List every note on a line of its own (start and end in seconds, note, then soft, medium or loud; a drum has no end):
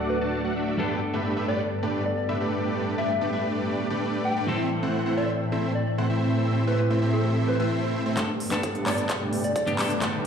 0.00 0.75 D2 medium
0.00 0.75 D3 medium
0.00 0.75 F#3 medium
0.00 0.18 A3 medium
0.00 0.75 A3 medium
0.00 0.76 A3 medium
0.00 0.18 D4 medium
0.00 0.76 D4 medium
0.00 0.18 F#4 medium
0.00 0.75 F#4 medium
0.00 0.77 A4 medium
0.00 6.29 A4 medium
0.00 0.18 D5 medium
0.00 0.18 F#5 medium
0.10 0.17 B4 medium
0.21 0.41 A3 medium
0.21 0.42 D4 medium
0.21 0.41 F#4 medium
0.21 0.29 B4 medium
0.21 0.41 D5 medium
0.21 0.42 A5 loud
0.44 0.54 A3 medium
0.44 0.54 D4 medium
0.44 0.54 F#4 medium
0.44 0.54 D5 medium
0.44 0.54 F#5 medium
0.56 0.76 A3 medium
0.56 0.76 D4 medium
0.56 0.76 F#4 medium
0.56 0.76 D5 medium
0.56 0.76 E5 medium
0.77 4.45 G2 medium
0.77 4.44 G2 medium
0.77 4.45 G3 medium
0.77 4.44 G3 medium
0.77 0.99 A3 medium
0.77 4.45 B3 medium
0.77 4.44 B3 medium
0.77 0.99 D4 medium
0.77 4.46 D4 medium
0.77 0.99 G4 medium
0.77 4.46 A4 medium
0.77 1.00 B4 medium
0.77 4.44 D5 medium
0.77 0.99 D5 medium
1.13 1.34 A3 medium
1.13 1.34 D4 medium
1.13 1.34 G4 medium
1.13 1.34 B4 medium
1.13 1.34 E5 medium
1.36 1.46 A3 loud
1.36 1.46 D4 medium
1.36 1.46 G4 medium
1.36 1.46 B4 medium
1.36 1.46 E5 loud
1.48 1.61 A3 loud
1.48 1.61 D4 medium
1.48 1.61 G4 medium
1.48 1.61 B4 medium
1.48 1.61 D5 loud
1.48 1.62 D5 medium
1.83 2.03 A3 medium
1.83 2.03 D4 medium
1.83 2.03 G4 medium
1.83 2.03 B4 medium
1.83 2.03 D5 medium
2.06 2.13 D5 medium
2.17 2.25 D5 medium
2.29 2.38 A3 medium
2.29 2.38 D4 medium
2.29 2.38 G4 medium
2.29 2.38 B4 medium
2.29 2.38 E5 medium
2.40 2.95 A3 medium
2.40 2.95 D4 medium
2.40 2.95 G4 medium
2.40 2.95 B4 medium
2.40 2.95 D5 medium
2.98 3.11 A3 medium
2.98 3.11 D4 medium
2.98 3.11 G4 medium
2.98 3.11 B4 medium
2.98 3.11 D5 loud
2.98 3.30 E5 medium
3.21 3.31 A3 medium
3.21 3.31 D4 medium
3.21 3.31 G4 medium
3.21 3.31 B4 medium
3.21 3.31 D5 medium
3.33 3.88 A3 medium
3.33 3.88 D4 medium
3.33 3.88 G4 medium
3.33 3.88 B4 medium
3.33 3.88 D5 medium
3.33 3.46 E5 medium
3.90 4.34 A3 medium
3.90 4.34 D4 medium
3.90 4.34 G4 medium
3.90 4.34 B4 medium
3.90 4.34 D5 loud
4.25 4.53 G5 medium
4.36 4.46 A3 medium
4.36 4.46 D4 medium
4.36 4.46 G4 medium
4.36 4.46 B4 medium
4.36 4.46 D5 medium
4.47 8.14 A2 medium
4.47 8.14 E3 medium
4.47 8.14 A3 medium
4.47 4.69 A3 medium
4.47 8.14 C4 medium
4.47 4.69 C4 medium
4.47 8.15 C4 medium
4.47 4.69 E4 medium
4.47 8.15 A4 medium
4.47 4.69 C5 medium
4.47 8.14 E5 medium
4.47 4.69 E5 medium
4.83 5.03 A3 medium
4.83 5.03 C4 medium
4.83 5.03 E4 medium
4.83 5.03 C5 medium
4.83 5.03 F#5 medium
5.06 5.16 A3 loud
5.06 5.16 C4 medium
5.06 5.16 E4 medium
5.06 5.16 C5 medium
5.06 5.16 F#5 loud
5.17 5.30 A3 loud
5.17 5.30 C4 medium
5.17 5.30 E4 medium
5.17 5.30 C5 medium
5.17 5.31 D5 medium
5.17 5.30 E5 loud
5.52 5.73 A3 medium
5.52 5.73 C4 medium
5.52 5.73 E4 medium
5.52 5.73 C5 medium
5.52 5.73 E5 medium
5.75 5.82 D5 medium
5.87 5.94 D5 medium
5.98 6.07 A3 medium
5.98 6.07 C4 medium
5.98 6.07 E4 medium
5.98 6.07 C5 medium
5.98 6.07 F#5 medium
6.10 6.65 A3 medium
6.10 6.65 C4 medium
6.10 6.65 E4 medium
6.10 6.65 C5 medium
6.10 6.65 E5 medium
6.33 8.15 G4 medium
6.67 6.80 A3 medium
6.67 6.80 C4 medium
6.67 6.80 E4 medium
6.67 6.75 B4 medium
6.67 6.80 C5 medium
6.67 6.80 E5 loud
6.79 6.86 B4 medium
6.90 7.00 A3 medium
6.90 7.00 C4 medium
6.90 7.00 E4 medium
6.90 7.00 C5 medium
6.90 7.00 E5 medium
7.02 7.57 A3 medium
7.02 7.57 C4 medium
7.02 7.57 E4 medium
7.02 7.57 C5 medium
7.02 7.57 E5 medium
7.13 7.27 A4 medium
7.48 7.55 B4 medium
7.60 8.03 A3 medium
7.60 8.03 C4 medium
7.60 8.03 E4 medium
7.60 7.67 B4 medium
7.60 8.03 C5 medium
7.60 8.03 E5 loud
8.06 8.16 A3 medium
8.06 8.16 C4 medium
8.06 8.16 E4 medium
8.06 8.16 C5 medium
8.06 8.16 E5 medium
8.16 8.30 G2 medium
8.16 10.27 G2 medium
8.16 10.27 G3 medium
8.16 8.30 G3 medium
8.16 8.38 A3 medium
8.16 8.31 B3 medium
8.16 10.27 B3 medium
8.16 8.31 D4 medium
8.16 8.38 G4 medium
8.16 10.27 A4 medium
8.16 8.31 A4 medium
8.16 8.38 B4 medium
8.16 10.27 D5 medium
8.16 kick loud
8.16 clap soft
8.16 closed hi-hat medium
8.16 riser medium
8.40 open hi-hat loud
8.51 8.83 G2 medium
8.51 8.84 G3 medium
8.51 8.72 A3 medium
8.51 8.84 B3 medium
8.51 8.72 D4 medium
8.51 8.84 D4 medium
8.51 8.72 G4 medium
8.51 8.84 A4 medium
8.51 8.72 B4 medium
8.51 8.72 A5 medium
8.51 clap soft
8.51 closed hi-hat medium
8.63 kick loud
8.63 closed hi-hat medium
8.75 8.85 A3 loud
8.75 8.85 D4 medium
8.75 8.85 G4 medium
8.75 8.85 B4 medium
8.75 8.85 A5 loud
8.75 closed hi-hat soft
8.86 9.29 G2 medium
8.86 9.30 G3 medium
8.86 8.99 A3 loud
8.86 9.30 B3 medium
8.86 8.99 D4 medium
8.86 9.30 D4 medium
8.86 8.99 G4 medium
8.86 9.30 A4 medium
8.86 8.99 B4 medium
8.86 9.00 D5 medium
8.86 8.99 G5 loud
8.86 clap soft
8.86 open hi-hat medium
8.98 closed hi-hat medium
9.09 kick loud
9.09 clap medium
9.09 closed hi-hat medium
9.21 9.42 A3 medium
9.21 9.42 D4 medium
9.21 9.42 G4 medium
9.21 9.42 B4 medium
9.21 9.42 G5 medium
9.33 open hi-hat loud
9.44 9.52 D5 medium
9.44 closed hi-hat medium
9.56 9.63 D5 medium
9.56 kick loud
9.56 closed hi-hat medium
9.66 9.77 G2 medium
9.66 9.77 G3 medium
9.66 9.76 A3 medium
9.66 9.77 B3 medium
9.66 9.76 D4 medium
9.66 9.77 D4 medium
9.66 9.76 G4 medium
9.66 9.77 G4 loud
9.66 9.76 B4 medium
9.66 9.76 A5 medium
9.66 closed hi-hat soft
9.78 9.92 G2 medium
9.78 9.92 G3 medium
9.78 10.27 A3 medium
9.78 9.92 B3 medium
9.78 10.27 D4 medium
9.78 9.92 D4 medium
9.78 10.27 G4 medium
9.78 9.92 A4 medium
9.78 10.27 B4 medium
9.78 10.27 G5 medium
9.78 clap medium
9.78 open hi-hat medium
9.90 closed hi-hat medium
10.01 10.15 G2 medium
10.01 10.15 G3 medium
10.01 10.15 B3 medium
10.01 10.15 D4 medium
10.01 10.15 A4 medium
10.01 kick loud
10.01 clap medium
10.01 closed hi-hat medium